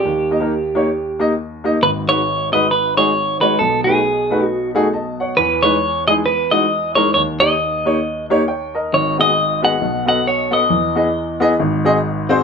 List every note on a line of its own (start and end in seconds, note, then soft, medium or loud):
0.00 1.34 G4 medium
0.05 1.79 D#2 medium
0.05 1.79 D#3 medium
0.31 0.36 A#3 medium
0.31 0.37 D#4 medium
0.31 0.37 G4 medium
0.31 0.37 D#5 medium
0.40 0.51 A#3 medium
0.40 0.52 D#4 medium
0.40 0.52 G4 medium
0.40 0.52 A#4 medium
0.75 0.86 A#3 medium
0.75 0.86 D#4 medium
0.75 0.87 G4 medium
0.75 0.87 C#5 medium
1.19 1.30 A#3 medium
1.19 1.31 D#4 medium
1.19 1.31 G4 medium
1.19 1.31 D#5 medium
1.64 1.75 A#3 medium
1.64 1.75 D#4 medium
1.64 1.75 G4 medium
1.64 1.76 D#5 medium
1.82 3.56 G#1 medium
1.82 3.56 G#2 medium
1.82 1.90 B4 medium
2.08 2.19 G#3 medium
2.08 2.19 D#4 medium
2.08 2.19 F#4 medium
2.08 2.20 B4 medium
2.08 2.52 C#5 loud
2.53 2.64 G#3 medium
2.53 2.64 D#4 medium
2.53 2.64 F#4 medium
2.53 2.64 B4 medium
2.53 2.71 D#5 loud
2.71 2.96 B4 loud
2.97 3.08 G#3 medium
2.97 3.08 D#4 medium
2.97 3.08 F#4 medium
2.97 3.09 G#4 medium
2.97 3.41 C#5 loud
3.41 3.52 G#3 medium
3.41 3.53 D#4 medium
3.41 3.53 F#4 medium
3.41 3.59 B4 medium
3.41 3.53 C#5 medium
3.59 5.34 B1 medium
3.59 5.34 B2 medium
3.59 3.84 A4 medium
3.84 3.97 A3 medium
3.84 3.97 D#4 medium
3.84 3.97 F#4 medium
3.84 4.45 G#4 medium
3.84 3.98 B4 medium
4.30 4.41 A3 medium
4.30 4.41 D#4 medium
4.30 4.42 F#4 medium
4.30 4.42 B4 medium
4.45 4.70 F#4 medium
4.75 4.86 A3 medium
4.75 4.86 D#4 medium
4.75 4.86 F#4 medium
4.75 4.86 G#4 loud
4.93 5.18 D#5 medium
4.93 5.18 A5 medium
5.20 5.62 C#5 medium
5.20 5.62 F#5 medium
5.37 7.11 E2 medium
5.37 7.11 E3 medium
5.37 5.64 B4 medium
5.63 5.74 G#3 medium
5.63 5.74 D#4 medium
5.63 5.75 E4 medium
5.63 5.75 B4 medium
5.63 6.07 C#5 loud
6.08 6.18 G#3 medium
6.08 6.19 D#4 medium
6.08 6.19 E4 medium
6.08 6.19 G#4 medium
6.08 6.13 D#5 loud
6.26 6.53 B4 medium
6.51 6.63 G#3 medium
6.51 6.63 D#4 medium
6.51 6.63 E4 medium
6.51 6.63 F#4 medium
6.51 6.95 D#5 loud
6.95 7.07 G#3 medium
6.95 7.07 D#4 medium
6.95 7.08 E4 medium
6.95 7.08 A#4 medium
6.95 7.13 C#5 medium
7.14 8.89 D#2 medium
7.14 8.89 D#3 medium
7.14 7.21 C#5 medium
7.40 7.51 A#3 medium
7.40 7.52 D#4 medium
7.40 7.52 G4 medium
7.40 7.52 C#5 medium
7.40 8.25 D#5 loud
7.85 7.96 A#3 medium
7.85 7.96 D#4 medium
7.85 7.97 G4 medium
7.85 7.97 C#5 medium
8.30 8.41 A#3 medium
8.30 8.41 D#4 medium
8.30 8.41 G4 medium
8.30 8.41 C#5 loud
8.48 8.73 C#5 medium
8.48 8.73 G5 medium
8.75 9.17 A#4 medium
8.75 9.17 D#5 medium
8.93 9.78 G#1 medium
8.93 9.78 G#2 medium
8.93 9.20 C#5 medium
9.18 9.29 B3 medium
9.18 9.29 F#4 medium
9.18 9.30 G#4 medium
9.18 9.30 D#5 medium
9.18 9.64 D#5 loud
9.62 9.73 B3 medium
9.62 9.74 F#4 medium
9.62 9.74 G#4 medium
9.62 9.74 D#5 medium
9.62 10.07 F#5 loud
9.81 10.66 B1 medium
9.81 10.66 B2 medium
10.06 10.18 B3 medium
10.06 10.18 F#4 medium
10.06 10.18 A4 medium
10.06 10.18 D#5 medium
10.06 10.27 F#5 loud
10.27 10.53 C#5 medium
10.51 10.62 B3 medium
10.51 10.62 F#4 medium
10.51 10.62 A4 medium
10.51 12.26 D#5 medium
10.51 10.63 F#5 medium
10.70 11.55 E2 medium
10.70 11.55 E3 medium
10.95 11.06 B3 medium
10.95 11.07 E4 medium
10.95 11.07 G#4 medium
10.95 11.07 D#5 medium
11.40 11.51 B3 medium
11.40 11.51 E4 medium
11.40 11.51 G#4 medium
11.40 11.52 D#5 loud
11.59 12.43 G#1 medium
11.59 12.43 G#2 medium
11.85 11.95 C4 medium
11.85 11.96 F#4 medium
11.85 11.96 G#4 medium
11.85 11.96 D#5 loud
12.29 12.40 C4 loud
12.29 12.40 F#4 medium
12.29 12.40 G#4 medium
12.29 12.40 C5 loud